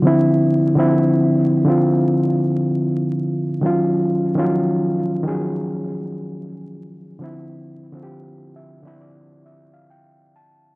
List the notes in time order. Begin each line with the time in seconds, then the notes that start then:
0.02 D3 F3 C4
0.07 E4
0.75 D3 F3 C4
0.80 E4
1.65 D3 F3 C4
1.70 F4
3.61 D#3 F#3 C#4
3.66 F4
4.35 D#3 F3 C#4
4.39 F#3 F4
5.23 D#3 F3 C#4
5.28 F#3 G#4
7.19 D3 F3 C4
7.24 E4
7.92 D3 F3 C4
7.97 F4
8.03 G4
8.56 E5
8.83 D3 F3 C4 D5
8.87 E4
9.01 D5
9.46 E5
9.73 F5
9.90 G5
10.36 A5